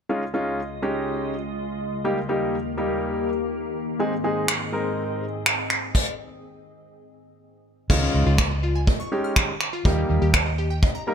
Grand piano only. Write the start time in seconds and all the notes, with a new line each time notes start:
0.09 G#3 C#4 D#4 F4
0.34 G#3 C#4 D#4 F4
0.82 G#3 C#4 D#4 G4
2.04 G3 A#3 D#4 G4
2.29 G3 A#3 D#4 G4
2.77 G3 A#3 D#4 G4
3.99 G#3 C4 D#4 G#4
4.24 G#3 C4 D#4 G#4
4.73 G#3 C4 D#4 A#4
7.90 G#3 C#4 D#4 F4
9.12 G#3 C#4 D#4 G4
9.85 G3 A#3 D#4 G4
11.07 G3 A#3 D#4 A#4